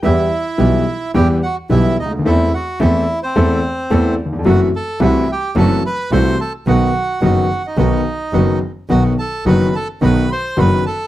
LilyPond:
<<
  \new Staff \with { instrumentName = "Bandoneon" } { \time 4/4 \key e \minor \tempo 4 = 108 <e' e''>2 <g' g''>8 <fis' fis''>8 <e' e''>8 <dis' dis''>8 | <e' e''>8 <fis' fis''>8 <e' e''>8. <c' c''>4.~ <c' c''>16 r8 | <fis' fis''>8 <a' a''>8 <e' e''>8 <g' g''>8 <a' a''>8 <b' b''>8 <c'' c'''>8 <a' a''>8 | <fis' fis''>4 <fis' fis''>8. <dis' dis''>4.~ <dis' dis''>16 r8 |
<fis' fis''>8 <a' a''>8 <b' b''>8 <a' a''>8 <b' b''>8 <c'' c'''>8 <b' b''>8 <a' a''>8 | }
  \new Staff \with { instrumentName = "Bandoneon" } { \time 4/4 \key e \minor <g b e'>8 r8 <g b e'>8 r8 <g b e'>8 r8 <g b e'>8 r8 | <a c' e'>8 r8 <a c' e'>8 r8 <a c' e'>8 r8 <a c' e'>8 r8 | <a e' fis'>8 r8 <a e' fis'>8 r8 <a e' fis'>8 r8 <a e' fis'>8 r8 | <b dis' fis'>8 r8 <b dis' fis'>8 r8 <b dis' fis'>8 r8 <b dis' fis'>8 r8 |
<b dis' fis'>8 r8 <b dis' fis'>8 r8 <b dis' fis'>8 r8 <b dis' fis'>8 r8 | }
  \new Staff \with { instrumentName = "Grand piano" } { \clef bass \time 4/4 \key e \minor <e, e g b g'>8 r8 <b,, b, e g b g'>8 r8 <e, e g b g'>8 r8 <b,, b, e g b g'>8 r32 cis,32 d,32 dis,32 | <e, e a c' a'>8 r8 <e, e a c' a'>8 r8 <e, e a c' a'>8 r8 <e, e a c' a'>8 r32 dis,32 e,32 f,32 | <fis, e fis a c' fis'>8 r8 <c, c e a c' fis'>8 r8 <fis, e fis a c' fis'>8 r8 <c, c e a c' fis'>8 r8 | <b,, b, dis fis b fis'>8 r8 <fis,, fis, dis fis b fis'>8 r8 <b,, b, dis fis b fis'>8 r8 <fis,, fis, dis fis b fis'>8 r8 |
<b,, b, dis fis b fis'>8 r8 <fis,, fis, dis fis b fis'>8 r8 <b,, b, dis fis b fis'>8 r8 <fis,, fis, dis fis b fis'>8 r8 | }
  \new Staff \with { instrumentName = "Double bass" } { \clef bass \time 4/4 \key e \minor e,8 r8 b,,8 r8 e,8 r8 b,,8 d,8 | e,8 r8 e,8 r8 e,8 r8 e,8 r8 | fis,,8 r8 c,8 r8 fis,,8 r8 c,8 r8 | b,,8 r8 fis,,8 r8 b,,8 r8 fis,,8 r8 |
b,,8 r8 fis,,8 r8 b,,8 r8 fis,,8 r8 | }
>>